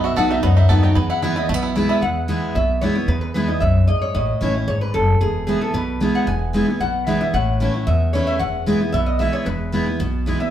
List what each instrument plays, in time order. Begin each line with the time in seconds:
Already playing: steel-string acoustic guitar B2, five-string banjo B3 A4
0.04 five-string banjo F#4, resonator guitar played with a steel bar E5
0.16 upright bass B1, steel-string acoustic guitar F#3 B3 D#4 F#4, five-string banjo A4, resonator guitar played with a steel bar F#5
0.30 five-string banjo D#4, steel-string acoustic guitar D#4 F#4, resonator guitar played with a steel bar E5
0.43 upright bass C#2, steel-string acoustic guitar F#2, five-string banjo B3, resonator guitar played with a steel bar D#5
0.57 five-string banjo D#4, resonator guitar played with a steel bar E5
0.69 upright bass D#2, steel-string acoustic guitar F#3 B3 D#4 F#4, five-string banjo A4, resonator guitar played with a steel bar F#5
0.83 five-string banjo D#4, steel-string acoustic guitar D#4 F#4, resonator guitar played with a steel bar G5
0.95 upright bass E2, steel-string acoustic guitar E2, five-string banjo B3, resonator guitar played with a steel bar G#5
1.10 five-string banjo E4, resonator guitar played with a steel bar F#5
1.22 steel-string acoustic guitar E3 G#3 B3 E4, five-string banjo E4, resonator guitar played with a steel bar E5
1.36 steel-string acoustic guitar B3 E4, five-string banjo E4, resonator guitar played with a steel bar D#5
1.49 upright bass B1, steel-string acoustic guitar B2, five-string banjo A3, resonator guitar played with a steel bar E5
1.54 five-string banjo B3
1.63 five-string banjo E4
1.75 steel-string acoustic guitar E3 G#3 B3 E4, five-string banjo E4
1.89 five-string banjo E4, resonator guitar played with a steel bar E5
2.02 upright bass E2, steel-string acoustic guitar E2, resonator guitar played with a steel bar F#5
2.28 steel-string acoustic guitar E3 G#3 B3 E4
2.55 upright bass B1, steel-string acoustic guitar B2, resonator guitar played with a steel bar E5
2.81 steel-string acoustic guitar E3 G#3 B3 E4, resonator guitar played with a steel bar C#5
2.95 steel-string acoustic guitar B3 E4
3.08 upright bass E2, steel-string acoustic guitar E2, resonator guitar played with a steel bar B4
3.21 resonator guitar played with a steel bar B4
3.34 steel-string acoustic guitar E3 G#3 B3 E4, resonator guitar played with a steel bar B4
3.48 steel-string acoustic guitar B3 E4, resonator guitar played with a steel bar D#5
3.60 upright bass B1, steel-string acoustic guitar F#2, resonator guitar played with a steel bar E5
3.87 steel-string acoustic guitar G#2, resonator guitar played with a steel bar D#5
4.02 resonator guitar played with a steel bar C#5
4.14 upright bass A1, steel-string acoustic guitar A2, resonator guitar played with a steel bar D#5
4.41 upright bass A1, steel-string acoustic guitar E3 A3 C#4 E4
4.54 steel-string acoustic guitar C#4 E4
4.68 upright bass G#1, steel-string acoustic guitar G#2, resonator guitar played with a steel bar C#5
4.81 resonator guitar played with a steel bar B4
4.94 upright bass F#1, steel-string acoustic guitar F#2, resonator guitar played with a steel bar A4
5.21 upright bass E1, steel-string acoustic guitar E2, resonator guitar played with a steel bar G#4
5.47 steel-string acoustic guitar E3 G#3 B3 E4, resonator guitar played with a steel bar G#4
5.61 steel-string acoustic guitar B3 E4, resonator guitar played with a steel bar A4
5.74 upright bass B1, steel-string acoustic guitar B2, resonator guitar played with a steel bar B4
6.00 steel-string acoustic guitar E3 G#3 B3 E4
6.15 resonator guitar played with a steel bar F#5
6.27 upright bass E1, steel-string acoustic guitar E2, resonator guitar played with a steel bar G#5
6.53 steel-string acoustic guitar E3 G#3 B3 E4
6.68 steel-string acoustic guitar B3 E4
6.80 upright bass B1, steel-string acoustic guitar B2, resonator guitar played with a steel bar F#5
7.07 steel-string acoustic guitar E3 G#3 B3 E4, resonator guitar played with a steel bar E5
7.21 steel-string acoustic guitar B3 E4, resonator guitar played with a steel bar E5
7.34 upright bass A1, steel-string acoustic guitar A2, resonator guitar played with a steel bar F#5
7.60 steel-string acoustic guitar E3 A3 C#4 E4
7.74 steel-string acoustic guitar C#4 E4
7.87 steel-string acoustic guitar E2, upright bass E2, resonator guitar played with a steel bar E5
8.13 steel-string acoustic guitar E3 A3 C#4 E4, resonator guitar played with a steel bar C#5
8.27 resonator guitar played with a steel bar E5
8.39 upright bass E1, steel-string acoustic guitar E2, resonator guitar played with a steel bar F#5
8.66 steel-string acoustic guitar E3 G#3 B3 E4
8.81 steel-string acoustic guitar B3 E4
8.93 upright bass B1, steel-string acoustic guitar B2, resonator guitar played with a steel bar E5
9.06 resonator guitar played with a steel bar D#5
9.19 steel-string acoustic guitar E3 G#3 B3 E4, resonator guitar played with a steel bar E5
9.33 resonator guitar played with a steel bar C#5
9.46 upright bass E1, steel-string acoustic guitar E2, resonator guitar played with a steel bar B4
9.72 steel-string acoustic guitar E3 G#3 B3 E4
9.86 steel-string acoustic guitar B3 E4
10.00 upright bass B1, steel-string acoustic guitar B2
10.26 steel-string acoustic guitar E3 G#3 B3 E4
10.40 steel-string acoustic guitar B3 E4, resonator guitar played with a steel bar E5